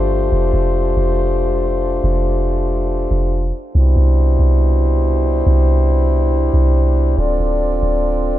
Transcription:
Already playing: G1 A3 D4 F4 G4 C5
0.32 F1 D4
0.53 F1
0.96 F1
2.04 F1
3.11 F1
3.75 C2 B2 D4 E4 G4 C5
3.96 C2
4.39 C2
5.46 C2
6.53 C2
7.18 D1 C4 F4 A4 D5
7.39 D1
7.82 D1

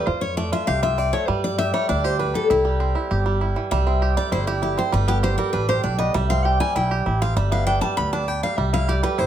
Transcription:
0.07 F2 F4 C5
0.21 C#5
0.37 A3 D5
0.52 F4 E5
0.67 C2 G4 F5
0.83 F4 E5
0.98 C4 D5
1.13 A3 C#5
1.28 G2 G3 B4
1.44 D5
1.58 G4 E5
1.74 G3 C#5
1.89 D2 D4 D5
2.04 G4 C5
2.19 D4 B4
2.34 B3 A4
2.50 C2 E4 G4
2.65 G3
2.80 C4
2.95 E4
3.11 G1 G4
3.26 G3
3.41 E4
3.56 E3
3.71 C2 G3 E5
3.87 C4
4.02 G4
4.17 G3 D5
4.32 G1 E4 C5
4.47 E4 G4
4.62 E4 G4
4.78 C4 C5
4.92 G1 G3 B4
5.08 B3 G4
5.23 G4 C5
5.38 G3 A#4
5.53 A1 D4 B4
5.69 G4 C5
5.83 B1 D4 D5
5.98 B3 D#5
6.14 C2 G3 E5
6.30 C4 F5
6.45 G4 G5
6.60 G3 G#5
6.76 B1 E4 G5
6.91 G4
7.06 A1 E4
7.22 C4 F5
7.36 G1 G3 E5
7.52 B3 F5
7.67 D4 G5
7.81 G3 A5
7.97 D2 B3 B5
8.13 D4 A5
8.28 B3 G5
8.43 G3 F5
8.57 C2 G3 E5
8.73 E4 F5
8.88 G4 D5
9.03 G3 B4
9.18 G1 E4 C5

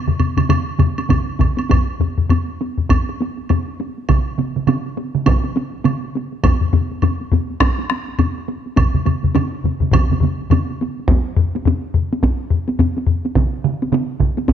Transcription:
0.07 taiko low-mid, taiko mid
0.19 taiko low-mid, taiko mid, taiko high, high woodblock
0.37 taiko low-mid, taiko mid, taiko high, high woodblock
0.49 taiko low-mid, taiko mid, taiko high, high woodblock
0.79 taiko low-mid, taiko mid, taiko high, high woodblock
0.98 taiko high, high woodblock
1.09 taiko, taiko low-mid, taiko mid, taiko high, high woodblock
1.39 taiko, taiko low-mid, taiko mid, taiko high, high woodblock
1.57 taiko high, high woodblock
1.70 taiko, taiko low-mid, taiko high, high woodblock
1.88 taiko high
2.00 taiko low-mid, taiko high
2.18 taiko low-mid, taiko high
2.29 taiko low-mid, taiko high, high woodblock
2.49 taiko high
2.61 taiko high
2.78 taiko low-mid, taiko high
2.89 taiko, taiko low-mid, taiko high, high woodblock
3.09 taiko high
3.21 taiko high
3.38 taiko high
3.49 taiko low-mid, taiko high, high woodblock
3.68 taiko high
3.80 taiko high
3.98 taiko high
4.09 taiko, taiko mid, taiko high, high woodblock
4.38 taiko mid, taiko high
4.56 taiko mid, taiko high
4.67 taiko mid, taiko high, high woodblock
4.85 taiko high
4.97 taiko high
5.15 taiko mid, taiko high
5.26 taiko, taiko mid, taiko high, high woodblock
5.44 taiko high
5.56 taiko high
5.73 taiko high
5.85 taiko mid, taiko high, high woodblock
6.04 taiko high
6.15 taiko high
6.32 taiko high
6.44 taiko, taiko low-mid, taiko high, high woodblock
6.61 taiko low-mid, taiko high
6.73 taiko low-mid, taiko high
6.91 taiko high
7.02 taiko low-mid, taiko high, high woodblock
7.21 taiko high
7.32 taiko low-mid, taiko high
7.50 taiko high
7.60 taiko rim, taiko, taiko high, high woodblock
7.79 taiko high
7.90 taiko rim, taiko high
8.08 taiko high
8.19 taiko low-mid, taiko high, high woodblock
8.38 taiko high
8.48 taiko high
8.66 taiko high
8.76 taiko, taiko low-mid, taiko mid, taiko high, high woodblock
8.94 taiko low-mid, taiko mid, taiko high
9.06 taiko low-mid, taiko mid, taiko high, high woodblock
9.23 taiko low-mid, taiko mid, taiko high
9.35 taiko low-mid, taiko mid, taiko high, high woodblock
9.53 taiko high
9.64 taiko low-mid, taiko mid, taiko high
9.80 taiko low-mid, taiko mid, taiko high
9.92 taiko, taiko low-mid, taiko mid, taiko high, high woodblock
10.09 taiko low-mid, taiko mid, taiko high
10.20 taiko low-mid, taiko mid, taiko high
10.42 taiko high
10.50 taiko low-mid, taiko mid, taiko high, high woodblock
10.70 taiko high
10.81 taiko high
11.00 taiko high
11.08 taiko, taiko low-mid, taiko high
11.37 taiko low-mid
11.56 taiko high
11.65 taiko low-mid, taiko high
11.94 taiko low-mid
12.13 taiko high
12.23 taiko, taiko high
12.50 taiko low-mid
12.68 taiko high
12.79 taiko low-mid, taiko high
12.97 taiko high
13.07 taiko low-mid
13.25 taiko high
13.35 taiko, taiko mid, taiko high
13.64 taiko mid
13.82 taiko high
13.92 taiko mid, taiko high
14.20 taiko, taiko mid
14.37 taiko high
14.48 taiko, taiko high

